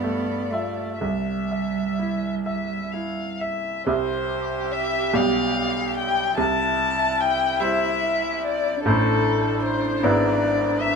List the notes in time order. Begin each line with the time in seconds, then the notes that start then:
Already playing: G2 B3 D5
0.03 A3
0.51 A3 F4 E5
1.00 C2 G3 E5
1.51 E5
1.99 E4
2.45 E5
2.92 E4 F5
3.40 E5
3.86 C2 C3 G3 G4 C5 E5
4.72 E5
5.13 B1 B2 G3 G4 D5 F5
5.97 G5
6.37 C2 C3 E4 A5
7.20 G5
7.60 G3 E4 C5 E5
8.45 D5
8.84 A1 A2 A3 D4 E4 A4 C5
9.62 C5
10.03 G#1 G#2 B3 E4 B4 D5
10.81 E5